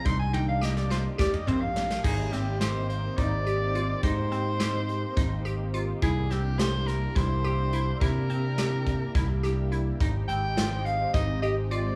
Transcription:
<<
  \new Staff \with { instrumentName = "Soprano saxophone" } { \time 7/8 \key aes \lydian \tempo 4 = 106 c'''16 aes''16 g''16 f''16 ees''16 d''16 c''8 d''16 ees''16 c''16 f''8. | aes'8 g'8 c''8 c''8 d''4. | c''2. r8 | aes'8 g'8 c''8 bes'8 c''4. |
bes'2. r8 | r8 g''4 f''8 ees''8 ees''8 d''8 | }
  \new Staff \with { instrumentName = "Synth arpeggio sound" } { \time 7/8 \key aes \lydian ees'8 ees'8 g'8 f'8 g'8 c'4 | ees'8 c'8 g'4 ees'8 g'8 f'8 | ees'8 c'8 g'4 ees'8 g'8 f'8 | e'8 c'8 g'4 e'8 g'8 e'8 |
e'8 c'8 g'4 e'8 g'8 e'8 | ees'8 c'8 f'4 ees'8 g'8 f'8 | }
  \new Staff \with { instrumentName = "Analog synth pad" } { \time 7/8 \key aes \lydian <bes d' ees' g'>2.~ <bes d' ees' g'>8 | <bes c' ees' g'>2.~ <bes c' ees' g'>8~ | <bes c' ees' g'>2.~ <bes c' ees' g'>8 | <bes d' e' g'>2.~ <bes d' e' g'>8~ |
<bes d' e' g'>2.~ <bes d' e' g'>8 | <aes c' ees' g'>2.~ <aes c' ees' g'>8 | }
  \new Staff \with { instrumentName = "Picked electric bass" } { \clef bass \time 7/8 \key aes \lydian c,2 r8 bes,,4 | aes,,8 aes,,4. aes,,4. | aes,2 aes,,4. | c,8 c,4. c,4. |
c2 c,4. | aes,,8 aes,,4. aes,,4. | }
  \new DrumStaff \with { instrumentName = "Drums" } \drummode { \time 7/8 <hh bd>8 tommh8 sn16 sn16 sn8 <bd sn>16 toml16 toml8 sn16 sn16 | <cymc bd>8 <hh sn>8 <hh sn>8 hh8 <hh bd>8 hh8 hh8 | <hh bd>8 hh8 <hh sn>8 hh8 <hh bd sn>8 hh8 hh8 | <hh bd>8 <hh sn>8 <hh sn>8 <hh sn>8 <hh bd>8 hh8 hh8 |
<hh bd>8 hh8 <hh sn>8 <hh bd>8 <hh bd>8 <hh sn>8 hh8 | <hh bd>8 hh8 <hh sn>8 hh8 <hh bd>8 hh8 hh8 | }
>>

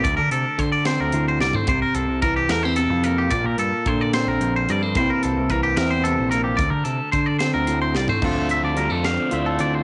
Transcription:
<<
  \new Staff \with { instrumentName = "Clean electric guitar" } { \time 6/8 \key d \minor \tempo 4. = 73 d''16 bes'16 a'8 c''16 d''16 c''16 bes'8 c''16 d''16 c''16 | c''16 bes'16 a'8 bes'16 g'16 bes'16 c''16 a'8 bes'16 g'16 | d''16 bes'16 a'8 c''16 d''16 c''16 bes'8 c''16 d''16 c''16 | c''16 bes'16 a'8 bes'16 g'16 bes'16 c''16 a'8 bes'16 g'16 |
d''16 bes'16 a'8 c''16 d''16 c''16 bes'8 c''16 d''16 c''16 | a'8 e''16 d''16 bes'16 a'16 f''8 e''16 a'16 d''16 c''16 | }
  \new Staff \with { instrumentName = "Overdriven electric guitar" } { \time 6/8 \key d \minor r2. | r2. | r2. | r2. |
r2. | <d f a d'>8 <f a d'>8 <d f a d'>8 <d f a d'>8 <d f a d'>4 | }
  \new Staff \with { instrumentName = "Clean electric guitar" } { \clef bass \time 6/8 \key d \minor << { r4. c'4 g16 a16 | r4. a16 c'8. bes8 | r4. c'4 g16 a16 | <e bes c' e'>4. c'4 bes8 |
r4. c'4 g16 a16 | <d a c' f'>4 g16 a16 c'8 f'8 c'8 | } \\ { d,4 d4 a,4 | c4 e4 c4 | bes,4 d4 f,4 | c4 e4 c4 |
d,4 d4 a,4 | d,4 d4 a,4 | } >> }
  \new Staff \with { instrumentName = "Picked electric bass" } { \clef bass \time 6/8 \key d \minor d,16 d16 c16 r16 d8. d,16 d,8 c,16 r16 | c,16 r16 c,16 c,8. e,8. f,8. | bes,,16 bes,16 g,16 r16 bes,8. bes,,16 bes,,8 g,8 | c,16 r16 c,16 c,8. e,8. bes,,8. |
d,16 d16 c16 r16 d8. d,16 d,8 c,16 r16 | d,8. d,8 f,8 r16 d,8 d,8 | }
  \new DrumStaff \with { instrumentName = "Drums" } \drummode { \time 6/8 <hh bd>8 hh8 <hh bd>8 <hh sn>8 hh8 sn16 tomfh16 | <hh bd>8 hh8 <hh bd>8 <hh sn>8 hh8 hh8 | <hh bd>8 hh8 <hh bd>8 <hh sn>8 hh8 hh8 | <hh bd>8 hh8 <hh bd>8 <hh sn>8 hh8 hh8 |
<hh bd>8 hh8 <hh bd>8 <hh sn>8 hh8 sn16 tomfh16 | <cymc bd>8 hh8 hh8 <hh sn>8 hh8 hh8 | }
>>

